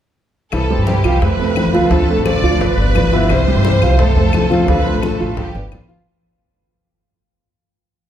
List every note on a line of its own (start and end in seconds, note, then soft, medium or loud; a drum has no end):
0.51 0.77 C2 medium
0.51 0.86 C3 medium
0.51 0.86 E3 medium
0.51 0.87 G3 medium
0.51 0.87 C4 medium
0.51 0.87 E4 medium
0.51 0.84 A4 medium
0.51 high bongo medium
0.51 high conga soft
0.51 claves medium
0.70 0.98 G3 medium
0.70 0.98 G4 medium
0.70 0.99 C5 medium
0.70 high bongo soft
0.70 high conga soft
0.78 1.03 G2 medium
0.86 1.20 C3 medium
0.86 1.21 E3 medium
0.86 1.21 G3 medium
0.86 1.20 C4 medium
0.86 1.22 E4 medium
0.86 1.21 G4 medium
0.86 high bongo medium
0.86 high conga medium
1.04 1.21 C2 medium
1.04 1.19 F3 medium
1.04 1.19 F4 medium
1.04 1.19 F5 medium
1.04 high conga soft
1.04 claves medium
1.21 1.38 F2 medium
1.21 1.36 A3 medium
1.21 1.36 A4 medium
1.21 1.91 B4 loud
1.21 1.36 C5 medium
1.21 muted steel-string acoustic guitar stroke medium
1.21 high bongo medium
1.21 high conga soft
1.38 1.64 F2 medium
1.38 1.68 A3 medium
1.38 1.68 C4 medium
1.38 1.68 A4 medium
1.38 high bongo soft
1.38 high conga soft
1.56 1.73 F3 soft
1.56 1.73 A3 soft
1.56 1.72 C4 soft
1.56 1.72 F4 soft
1.56 high bongo soft
1.56 low bongo medium
1.56 high conga medium
1.56 claves medium
1.65 1.90 F2 medium
1.73 1.88 F3 medium
1.73 1.89 F3 medium
1.73 1.89 A3 medium
1.73 1.90 C4 medium
1.73 1.90 F4 medium
1.73 1.88 F4 medium
1.73 1.89 F5 medium
1.73 high bongo soft
1.73 high conga medium
1.90 2.16 D2 loud
1.90 2.23 D3 medium
1.90 2.06 F3 medium
1.90 2.24 A3 medium
1.90 2.25 C4 medium
1.90 2.25 F4 medium
1.90 2.06 F4 medium
1.90 2.25 A4 loud
1.90 2.06 F5 medium
1.90 high bongo medium
1.90 high conga soft
2.08 2.37 A3 medium
2.08 2.37 A4 medium
2.08 2.37 C5 medium
2.08 high bongo soft
2.08 high conga soft
2.16 2.42 A1 medium
2.25 2.59 D3 medium
2.25 2.60 A3 medium
2.25 2.60 C4 medium
2.25 2.60 F4 medium
2.25 2.59 D5 loud
2.25 high bongo medium
2.25 high conga medium
2.25 claves medium
2.43 2.60 D2 medium
2.43 2.72 F3 medium
2.43 2.72 F4 medium
2.43 2.72 F5 medium
2.43 high conga soft
2.60 2.77 G1 medium
2.60 3.30 B4 loud
2.60 muted steel-string acoustic guitar stroke medium
2.60 high bongo medium
2.60 high conga soft
2.77 3.02 G1 loud
2.77 3.07 B3 medium
2.77 3.07 B4 medium
2.77 3.07 D5 medium
2.77 high bongo soft
2.77 high conga soft
2.94 3.11 G3 soft
2.94 3.12 B3 soft
2.94 3.11 F4 medium
2.94 high bongo soft
2.94 low bongo medium
2.94 high conga medium
2.94 claves medium
3.04 3.28 G1 medium
3.12 3.41 E3 medium
3.12 3.30 B3 medium
3.12 3.41 E4 medium
3.12 3.29 F4 medium
3.12 3.41 E5 medium
3.12 high bongo soft
3.12 high conga medium
3.29 3.55 C2 loud
3.29 3.62 C3 medium
3.29 3.63 E3 medium
3.29 3.63 G3 medium
3.29 3.63 C4 medium
3.29 3.64 E4 medium
3.29 3.99 C5 loud
3.29 high bongo medium
3.29 high conga soft
3.29 claves medium
3.47 3.76 G3 medium
3.47 3.76 G4 medium
3.47 3.76 C5 medium
3.47 high bongo soft
3.47 high conga soft
3.56 3.81 G2 medium
3.63 3.97 C3 medium
3.63 3.98 E3 medium
3.63 3.98 G3 medium
3.63 3.98 C4 medium
3.63 3.99 E4 medium
3.63 high bongo medium
3.63 high conga medium
3.82 3.99 C2 medium
3.82 3.96 F3 medium
3.82 3.96 F4 medium
3.82 3.96 F5 medium
3.82 high conga soft
3.82 claves medium
3.99 4.15 F2 medium
3.99 4.14 A3 medium
3.99 4.69 A4 loud
3.99 4.14 A4 medium
3.99 4.14 C5 medium
3.99 muted steel-string acoustic guitar stroke medium
3.99 high bongo medium
3.99 high conga soft
4.16 4.41 F2 loud
4.16 4.45 A3 medium
4.16 4.45 A4 medium
4.16 4.45 C5 medium
4.16 high bongo soft
4.16 high conga soft
4.32 4.50 F3 soft
4.32 4.50 A3 soft
4.32 4.49 C4 medium
4.32 4.49 F4 soft
4.32 high bongo soft
4.32 low bongo medium
4.32 high conga medium
4.32 claves medium
4.42 4.67 F2 medium
4.50 4.65 F3 medium
4.50 4.67 F3 medium
4.50 4.67 A3 medium
4.50 4.68 C4 medium
4.50 4.67 F4 medium
4.50 4.65 F4 medium
4.50 4.66 F5 medium
4.50 high bongo soft
4.50 high conga medium
4.68 4.93 D2 loud
4.68 5.01 D3 medium
4.68 4.83 F3 medium
4.68 5.02 A3 medium
4.68 5.02 C4 medium
4.68 4.83 F4 medium
4.68 5.03 F4 medium
4.68 5.01 B4 loud
4.68 4.83 F5 medium
4.68 high bongo medium
4.68 high conga soft
4.86 5.14 A3 medium
4.86 5.14 A4 medium
4.86 5.14 C5 medium
4.86 high bongo soft
4.86 high conga soft
4.95 5.19 A1 medium
5.02 5.36 D3 medium
5.02 5.37 A3 medium
5.02 5.37 C4 medium
5.02 5.37 F4 medium
5.02 5.38 A4 medium
5.02 high bongo medium
5.02 high conga medium
5.02 claves medium
5.20 5.37 A1 medium
5.20 5.48 F3 medium
5.20 5.49 F4 medium
5.20 5.49 F5 medium
5.20 high conga soft
5.37 5.54 G1 loud
5.37 5.73 G4 medium
5.37 muted steel-string acoustic guitar stroke medium
5.37 high bongo medium
5.37 high conga soft
5.55 5.71 G1 loud
5.55 5.83 B3 medium
5.55 5.84 B4 medium
5.55 5.84 D5 medium
5.55 high bongo soft
5.55 high conga soft
5.72 5.88 A1 medium
5.72 5.89 G3 soft
5.72 5.89 B3 soft
5.72 5.87 F4 medium
5.72 6.08 F4 medium
5.72 high bongo soft
5.72 low bongo medium
5.72 high conga medium
5.72 claves medium
5.88 6.05 G1 medium
5.88 6.04 F3 medium
5.88 6.06 B3 medium
5.88 6.06 F4 medium
5.88 6.04 F4 medium
5.88 6.04 F5 medium
5.88 high bongo soft
5.88 high conga medium